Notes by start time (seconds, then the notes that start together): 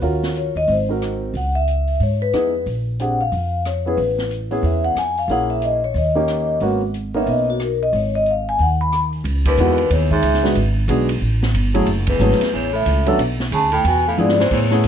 0.02 D#2 C#4 F4 F#4 A#4, open hi-hat
0.23 snare
0.35 C#5, closed hi-hat
0.55 D#2 D#5, open hi-hat
0.68 G#1, open hi-hat
0.72 C5
0.89 C4 D#4 F#4 A#4
1.02 cross-stick, closed hi-hat
1.34 C#2 F#5, open hi-hat
1.55 E5
1.68 closed hi-hat
1.87 open hi-hat
2.00 G#2 C#5, open hi-hat
2.22 B4
2.33 F2 B3 D#4 E4 G#4, cross-stick, closed hi-hat
2.66 A#1, open hi-hat
2.99 C4 D4 G4 G#4 F#5, closed hi-hat
3.21 F5
3.32 F2, open hi-hat
3.65 C#5, cross-stick, closed hi-hat
3.86 B3 C#4 E4 G#4 B4
3.97 A1, open hi-hat
4.18 snare
4.31 closed hi-hat
4.51 B3 C#4 E4 G#4, open hi-hat
4.63 E2 E5, open hi-hat
4.85 F#5
4.95 F2 G#5, cross-stick, closed hi-hat
5.17 F5, open hi-hat
5.28 A#1 A#3 C#4 E4 G#4 F#5, open hi-hat
5.50 E5
5.62 D#5, closed hi-hat
5.84 C#5
5.94 D#2 D#5, open hi-hat
6.15 A#3 C#4 D#4 G4
6.28 cross-stick, closed hi-hat
6.60 G#1 A#3 B3 C#4 F#4, open hi-hat
6.94 closed hi-hat
7.14 A#3 B3 C#4 D#4 E5, open hi-hat
7.26 B1 D#5, open hi-hat
7.50 F#4
7.59 A#4, cross-stick, closed hi-hat
7.83 D#5
7.93 G#1 C#5, open hi-hat
8.15 D#5
8.26 closed hi-hat
8.31 F5
8.49 G#5
8.59 D#2 F#5, open hi-hat
8.81 B5
8.92 cross-stick, closed hi-hat
9.12 open hi-hat
9.24 C#2, ride
9.45 D#2 B4, kick, ride
9.57 E2 G#3 B3 D#4 E4 F#4, hi-hat pedal
9.78 ride
9.90 D#2 E2 C#5, ride
10.11 G#2 E5, kick
10.22 C#2, hi-hat pedal, ride
10.34 snare
10.43 G#3 B3 D4 F#4 B4, snare
10.55 G#1, ride
10.88 B1 G#3 B3 D4 F#4 G#4, hi-hat pedal, ride
11.09 ride
11.21 A1
11.43 snare
11.54 G1, hi-hat pedal, ride
11.74 F#3 A3 C#4 E4 G#4, ride
11.86 F#1, ride
12.07 E2 B4, kick, ride
12.19 G#1 F#3 A3 C#4 E4 G#4, hi-hat pedal
12.32 snare
12.41 snare, ride
12.53 A1 E2 C#5
12.72 A2 E5
12.86 C#2, hi-hat pedal, ride
13.06 F#3 B3 C#4 D4 A4, ride
13.18 B1, ride
13.40 snare
13.51 D2 C#3 A5, hi-hat pedal, ride
13.72 A2 G5, ride
13.84 E2 B2 G#5, ride
14.07 A2 F5
14.17 F2 G#2 F3 B3 D4 E4 G#4 D5, hi-hat pedal
14.29 snare
14.40 E2 C5, snare
14.51 E2 A2 C#5, kick, crash
14.70 A3 B3 C#4 E4 G#4, snare
14.83 E2, hi-hat pedal, ride